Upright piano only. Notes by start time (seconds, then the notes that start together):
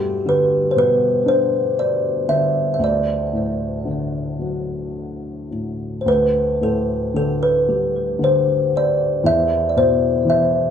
Already playing: G2
0.26 D3
0.76 B2
1.26 D4
2.29 D3
2.79 D2
3.33 A2
3.85 D3
4.39 F#3
5.51 A2
6.06 D2
6.61 A2
7.14 D3
7.68 G3
8.19 D3
9.24 E2
9.76 B2
10.25 E3